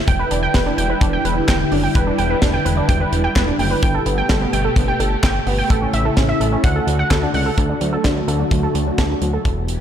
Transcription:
Already playing: string machine E4
0.07 analog synth bass E1, string machine D3 G3, synth pluck G5, kick, closed hi-hat
0.19 synth pluck B4
0.31 analog synth bass E1, synth pluck D4, closed hi-hat
0.43 synth pluck G5
0.54 analog synth bass E1, synth pluck B4, kick, snare, closed hi-hat
0.66 synth pluck D4
0.78 analog synth bass E1, synth pluck G5, closed hi-hat
0.90 synth pluck B4
1.01 analog synth bass E1, synth pluck D4, kick, closed hi-hat
1.13 synth pluck G5
1.25 analog synth bass E1, synth pluck B4, closed hi-hat
1.48 analog synth bass E1, synth pluck G5, kick, snare, clap, closed hi-hat
1.72 analog synth bass F#1, synth pluck D4, open hi-hat
1.83 synth pluck G5
1.95 analog synth bass E1, synth pluck B4, kick, closed hi-hat
2.07 synth pluck D4
2.18 analog synth bass E1, synth pluck G5, closed hi-hat
2.30 synth pluck B4
2.42 analog synth bass E1, synth pluck D4, kick, snare, closed hi-hat
2.54 synth pluck G5
2.65 analog synth bass E1, synth pluck B4, closed hi-hat
2.77 synth pluck D4
2.89 analog synth bass E1, synth pluck G5, kick, closed hi-hat
3.01 synth pluck B4
3.12 analog synth bass E1, closed hi-hat
3.24 synth pluck G5
3.36 analog synth bass E1, synth pluck B4, kick, snare, clap, closed hi-hat
3.48 synth pluck D4
3.59 analog synth bass F#1, synth pluck G5, open hi-hat
3.71 synth pluck B4
3.83 analog synth bass G1, string machine B2 A3 G4, synth pluck G5, kick, closed hi-hat
3.94 synth pluck A4
4.06 analog synth bass G1, synth pluck B3, closed hi-hat
4.18 synth pluck G5
4.29 analog synth bass G1, synth pluck A4, kick, snare, closed hi-hat
4.41 synth pluck B3
4.53 analog synth bass G1, synth pluck G5, closed hi-hat
4.65 synth pluck A4
4.76 analog synth bass G1, synth pluck B3, kick, closed hi-hat
4.88 synth pluck G5
5.00 analog synth bass G1, synth pluck A4, closed hi-hat
5.23 analog synth bass G1, synth pluck G5, kick, snare, clap, closed hi-hat
5.47 analog synth bass G1, synth pluck B3, open hi-hat
5.58 synth pluck G5
5.70 analog synth bass A1, string machine C#3 E4, synth pluck A4, kick, closed hi-hat
5.82 synth pluck C#4
5.93 analog synth bass A1, synth pluck E5, closed hi-hat
6.05 synth pluck A4
6.17 analog synth bass A1, synth pluck C#4, kick, snare, closed hi-hat
6.29 synth pluck E5
6.40 analog synth bass A1, synth pluck A4, closed hi-hat
6.52 synth pluck C#4
6.64 analog synth bass D2, string machine D3 F#4, synth pluck F#5, kick, closed hi-hat
6.76 synth pluck A4
6.87 analog synth bass D2, closed hi-hat
6.99 synth pluck F#5
7.11 analog synth bass D2, synth pluck A4, kick, snare, clap, closed hi-hat
7.23 synth pluck D4
7.34 analog synth bass C#2, synth pluck F#5, open hi-hat
7.46 synth pluck A4
7.58 analog synth bass D2, string machine D3 A3 F#4, synth pluck A4, kick, closed hi-hat
7.69 synth pluck D4
7.81 analog synth bass D2, synth pluck F#3, closed hi-hat
7.93 synth pluck A4
8.04 analog synth bass D2, synth pluck D4, kick, snare, closed hi-hat
8.16 synth pluck F#3
8.28 analog synth bass D2, synth pluck A4, closed hi-hat
8.40 synth pluck D4
8.51 analog synth bass D2, synth pluck F#3, kick, closed hi-hat
8.63 synth pluck A4
8.75 analog synth bass D2, synth pluck D4, closed hi-hat
8.87 synth pluck F#3
8.98 analog synth bass D2, synth pluck A4, kick, snare, closed hi-hat
9.10 synth pluck D4
9.22 analog synth bass D2, synth pluck F#3, closed hi-hat
9.34 synth pluck A4
9.45 analog synth bass E1, string machine E3 B3 G4, kick, closed hi-hat
9.68 closed hi-hat

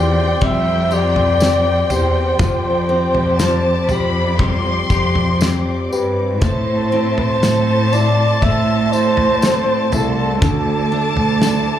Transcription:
Already playing: cello section E2, upright piano G3 C4 F4 G4, steel-string acoustic guitar C4 G4 C5, string section C4 G4 D5 C6, flugelhorn D5, violin section G5
0.41 cello section F2, steel-string acoustic guitar G3, upright piano C4, flugelhorn E5, kick, floor tom
0.91 steel-string acoustic guitar G4, upright piano G4, flugelhorn D5, tambourine
1.16 floor tom
1.40 upright piano C4, steel-string acoustic guitar C4, snare, tambourine
1.90 cello section E2, upright piano G4, steel-string acoustic guitar C5, flugelhorn C5, floor tom, tambourine
2.39 cello section F2, steel-string acoustic guitar F3, upright piano F3, string section D6, kick, floor tom, tambourine
2.89 steel-string acoustic guitar C4, upright piano C4
3.13 cello section F2, floor tom
3.38 upright piano F4, steel-string acoustic guitar G4, violin section A5, snare, tambourine
3.89 cello section F2, upright piano G4, steel-string acoustic guitar C5, violin section B5, floor tom, tambourine
4.39 steel-string acoustic guitar G3, upright piano C4, violin section C6, kick, floor tom
4.90 cello section F2, steel-string acoustic guitar G4, upright piano G4, kick, tambourine
5.15 floor tom
5.41 steel-string acoustic guitar C4, upright piano C4, snare, tambourine
5.91 cello section G2, upright piano G4, flugelhorn B4, tambourine
6.41 steel-string acoustic guitar A2, cello section A2, upright piano A3, string section A4 E5 C6, flugelhorn C5, violin section A5, kick, floor tom, tambourine
6.92 steel-string acoustic guitar C4, upright piano E4
7.18 flugelhorn C5, floor tom
7.42 cello section A2, upright piano A3, steel-string acoustic guitar A4, snare, tambourine
7.93 upright piano E4, steel-string acoustic guitar C5, flugelhorn D5, tambourine
8.42 cello section A2, steel-string acoustic guitar A3, upright piano A3, string section D5, flugelhorn E5, kick, floor tom
8.92 upright piano E4, steel-string acoustic guitar A4, flugelhorn C5, tambourine
9.17 floor tom
9.42 upright piano A3, steel-string acoustic guitar C4, snare, tambourine
9.92 cello section C2, upright piano E4, flugelhorn A4, steel-string acoustic guitar C5, floor tom, tambourine
10.42 cello section D2, steel-string acoustic guitar D3, upright piano D3, string section D5 A5 D6, violin section A5, kick, floor tom, tambourine
10.92 upright piano A3, steel-string acoustic guitar D4
11.16 cello section D2, floor tom
11.42 upright piano D4, steel-string acoustic guitar E4, snare, tambourine

